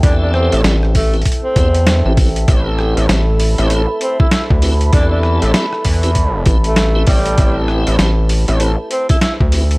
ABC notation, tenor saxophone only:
X:1
M:4/4
L:1/16
Q:"Swing 16ths" 1/4=98
K:Am
V:1 name="Tenor saxophone"
D D C z3 A, z2 C4 z3 | z8 z2 C E E z3 | D D z A, A, z6 A,3 G,2- | G,2 z8 C E E z3 |]